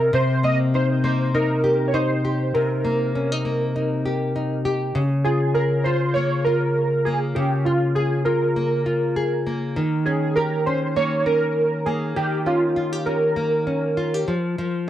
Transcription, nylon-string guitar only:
0, 0, Header, 1, 2, 480
1, 0, Start_track
1, 0, Tempo, 601202
1, 113, Time_signature, 4, 2, 24, 8
1, 11891, End_track
2, 0, Start_track
2, 0, Title_t, "Nylon-string guitar"
2, 0, Program_c, 0, 24
2, 0, Note_on_c, 0, 48, 81
2, 95, Note_off_c, 0, 48, 0
2, 105, Note_on_c, 0, 48, 100
2, 347, Note_on_c, 0, 58, 69
2, 592, Note_on_c, 0, 63, 56
2, 826, Note_off_c, 0, 58, 0
2, 829, Note_on_c, 0, 58, 64
2, 1065, Note_off_c, 0, 63, 0
2, 1074, Note_on_c, 0, 63, 67
2, 1308, Note_on_c, 0, 67, 68
2, 1538, Note_off_c, 0, 63, 0
2, 1548, Note_on_c, 0, 63, 68
2, 1784, Note_off_c, 0, 67, 0
2, 1794, Note_on_c, 0, 67, 63
2, 2024, Note_off_c, 0, 48, 0
2, 2034, Note_on_c, 0, 48, 88
2, 2269, Note_off_c, 0, 58, 0
2, 2272, Note_on_c, 0, 58, 64
2, 2510, Note_off_c, 0, 63, 0
2, 2518, Note_on_c, 0, 61, 63
2, 2650, Note_off_c, 0, 61, 0
2, 2650, Note_on_c, 0, 63, 52
2, 2752, Note_off_c, 0, 58, 0
2, 2755, Note_on_c, 0, 58, 64
2, 2991, Note_off_c, 0, 63, 0
2, 3001, Note_on_c, 0, 63, 64
2, 3228, Note_off_c, 0, 67, 0
2, 3238, Note_on_c, 0, 67, 65
2, 3469, Note_off_c, 0, 63, 0
2, 3479, Note_on_c, 0, 63, 71
2, 3704, Note_off_c, 0, 67, 0
2, 3714, Note_on_c, 0, 67, 70
2, 3949, Note_off_c, 0, 48, 0
2, 3952, Note_on_c, 0, 49, 82
2, 4006, Note_off_c, 0, 67, 0
2, 4008, Note_off_c, 0, 63, 0
2, 4194, Note_on_c, 0, 65, 59
2, 4430, Note_on_c, 0, 68, 56
2, 4454, Note_off_c, 0, 58, 0
2, 4667, Note_off_c, 0, 65, 0
2, 4677, Note_on_c, 0, 65, 61
2, 4916, Note_on_c, 0, 58, 59
2, 5152, Note_off_c, 0, 65, 0
2, 5161, Note_on_c, 0, 65, 61
2, 5392, Note_off_c, 0, 68, 0
2, 5638, Note_off_c, 0, 58, 0
2, 5641, Note_on_c, 0, 58, 64
2, 5867, Note_off_c, 0, 49, 0
2, 5877, Note_on_c, 0, 49, 87
2, 6109, Note_off_c, 0, 65, 0
2, 6119, Note_on_c, 0, 65, 58
2, 6354, Note_on_c, 0, 68, 57
2, 6582, Note_off_c, 0, 65, 0
2, 6591, Note_on_c, 0, 65, 61
2, 6833, Note_off_c, 0, 58, 0
2, 6837, Note_on_c, 0, 58, 58
2, 7064, Note_off_c, 0, 65, 0
2, 7074, Note_on_c, 0, 65, 59
2, 7307, Note_off_c, 0, 68, 0
2, 7316, Note_on_c, 0, 68, 66
2, 7554, Note_off_c, 0, 58, 0
2, 7557, Note_on_c, 0, 58, 60
2, 7796, Note_off_c, 0, 49, 0
2, 7796, Note_on_c, 0, 51, 83
2, 7847, Note_off_c, 0, 65, 0
2, 7848, Note_off_c, 0, 68, 0
2, 8035, Note_on_c, 0, 61, 57
2, 8277, Note_on_c, 0, 67, 67
2, 8509, Note_off_c, 0, 61, 0
2, 8518, Note_on_c, 0, 61, 61
2, 8750, Note_off_c, 0, 58, 0
2, 8753, Note_on_c, 0, 58, 65
2, 8981, Note_off_c, 0, 61, 0
2, 8991, Note_on_c, 0, 61, 58
2, 9462, Note_off_c, 0, 58, 0
2, 9472, Note_on_c, 0, 58, 65
2, 9708, Note_off_c, 0, 51, 0
2, 9711, Note_on_c, 0, 51, 89
2, 9940, Note_off_c, 0, 61, 0
2, 9950, Note_on_c, 0, 61, 62
2, 9974, Note_off_c, 0, 67, 0
2, 10190, Note_on_c, 0, 65, 64
2, 10320, Note_off_c, 0, 65, 0
2, 10320, Note_on_c, 0, 67, 54
2, 10421, Note_off_c, 0, 61, 0
2, 10430, Note_on_c, 0, 61, 62
2, 10659, Note_off_c, 0, 58, 0
2, 10669, Note_on_c, 0, 58, 55
2, 10903, Note_off_c, 0, 61, 0
2, 10913, Note_on_c, 0, 61, 59
2, 11149, Note_off_c, 0, 67, 0
2, 11155, Note_on_c, 0, 65, 74
2, 11291, Note_off_c, 0, 65, 0
2, 11291, Note_on_c, 0, 67, 57
2, 11396, Note_off_c, 0, 51, 0
2, 11399, Note_on_c, 0, 53, 75
2, 11442, Note_off_c, 0, 58, 0
2, 11444, Note_off_c, 0, 61, 0
2, 11448, Note_off_c, 0, 67, 0
2, 11635, Note_off_c, 0, 53, 0
2, 11644, Note_on_c, 0, 53, 87
2, 11891, Note_off_c, 0, 53, 0
2, 11891, End_track
0, 0, End_of_file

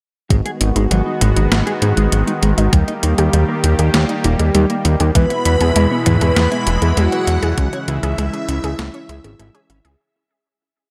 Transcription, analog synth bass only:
0, 0, Header, 1, 2, 480
1, 0, Start_track
1, 0, Key_signature, 5, "minor"
1, 0, Tempo, 606061
1, 242, Time_signature, 4, 2, 24, 8
1, 8634, End_track
2, 0, Start_track
2, 0, Title_t, "Analog synth bass"
2, 0, Program_c, 0, 38
2, 241, Note_on_c, 0, 32, 94
2, 328, Note_off_c, 0, 32, 0
2, 481, Note_on_c, 0, 32, 87
2, 569, Note_off_c, 0, 32, 0
2, 600, Note_on_c, 0, 32, 77
2, 688, Note_off_c, 0, 32, 0
2, 721, Note_on_c, 0, 32, 98
2, 808, Note_off_c, 0, 32, 0
2, 960, Note_on_c, 0, 32, 91
2, 1048, Note_off_c, 0, 32, 0
2, 1080, Note_on_c, 0, 32, 76
2, 1168, Note_off_c, 0, 32, 0
2, 1201, Note_on_c, 0, 32, 98
2, 1288, Note_off_c, 0, 32, 0
2, 1441, Note_on_c, 0, 44, 94
2, 1528, Note_off_c, 0, 44, 0
2, 1561, Note_on_c, 0, 32, 81
2, 1648, Note_off_c, 0, 32, 0
2, 1681, Note_on_c, 0, 32, 99
2, 1769, Note_off_c, 0, 32, 0
2, 1921, Note_on_c, 0, 32, 88
2, 2008, Note_off_c, 0, 32, 0
2, 2042, Note_on_c, 0, 32, 82
2, 2129, Note_off_c, 0, 32, 0
2, 2161, Note_on_c, 0, 39, 98
2, 2248, Note_off_c, 0, 39, 0
2, 2402, Note_on_c, 0, 39, 87
2, 2489, Note_off_c, 0, 39, 0
2, 2522, Note_on_c, 0, 39, 80
2, 2609, Note_off_c, 0, 39, 0
2, 2641, Note_on_c, 0, 39, 97
2, 2729, Note_off_c, 0, 39, 0
2, 2881, Note_on_c, 0, 39, 88
2, 2969, Note_off_c, 0, 39, 0
2, 3002, Note_on_c, 0, 39, 77
2, 3089, Note_off_c, 0, 39, 0
2, 3122, Note_on_c, 0, 39, 96
2, 3209, Note_off_c, 0, 39, 0
2, 3362, Note_on_c, 0, 27, 96
2, 3449, Note_off_c, 0, 27, 0
2, 3482, Note_on_c, 0, 39, 82
2, 3569, Note_off_c, 0, 39, 0
2, 3601, Note_on_c, 0, 39, 100
2, 3688, Note_off_c, 0, 39, 0
2, 3841, Note_on_c, 0, 39, 89
2, 3928, Note_off_c, 0, 39, 0
2, 3961, Note_on_c, 0, 39, 84
2, 4049, Note_off_c, 0, 39, 0
2, 4081, Note_on_c, 0, 40, 98
2, 4168, Note_off_c, 0, 40, 0
2, 4320, Note_on_c, 0, 40, 89
2, 4408, Note_off_c, 0, 40, 0
2, 4440, Note_on_c, 0, 40, 82
2, 4528, Note_off_c, 0, 40, 0
2, 4561, Note_on_c, 0, 40, 100
2, 4648, Note_off_c, 0, 40, 0
2, 4801, Note_on_c, 0, 40, 94
2, 4888, Note_off_c, 0, 40, 0
2, 4921, Note_on_c, 0, 40, 78
2, 5008, Note_off_c, 0, 40, 0
2, 5041, Note_on_c, 0, 40, 98
2, 5128, Note_off_c, 0, 40, 0
2, 5281, Note_on_c, 0, 28, 95
2, 5368, Note_off_c, 0, 28, 0
2, 5402, Note_on_c, 0, 40, 81
2, 5489, Note_off_c, 0, 40, 0
2, 5521, Note_on_c, 0, 40, 97
2, 5609, Note_off_c, 0, 40, 0
2, 5761, Note_on_c, 0, 40, 91
2, 5848, Note_off_c, 0, 40, 0
2, 5882, Note_on_c, 0, 40, 82
2, 5969, Note_off_c, 0, 40, 0
2, 6001, Note_on_c, 0, 37, 99
2, 6088, Note_off_c, 0, 37, 0
2, 6239, Note_on_c, 0, 37, 91
2, 6328, Note_off_c, 0, 37, 0
2, 6360, Note_on_c, 0, 37, 81
2, 6448, Note_off_c, 0, 37, 0
2, 6479, Note_on_c, 0, 37, 100
2, 6568, Note_off_c, 0, 37, 0
2, 6719, Note_on_c, 0, 37, 93
2, 6808, Note_off_c, 0, 37, 0
2, 6839, Note_on_c, 0, 37, 79
2, 6927, Note_off_c, 0, 37, 0
2, 6960, Note_on_c, 0, 37, 100
2, 7048, Note_off_c, 0, 37, 0
2, 7200, Note_on_c, 0, 37, 97
2, 7288, Note_off_c, 0, 37, 0
2, 7320, Note_on_c, 0, 32, 82
2, 7408, Note_off_c, 0, 32, 0
2, 7440, Note_on_c, 0, 32, 100
2, 7528, Note_off_c, 0, 32, 0
2, 7680, Note_on_c, 0, 32, 87
2, 7768, Note_off_c, 0, 32, 0
2, 7801, Note_on_c, 0, 37, 82
2, 7888, Note_off_c, 0, 37, 0
2, 8634, End_track
0, 0, End_of_file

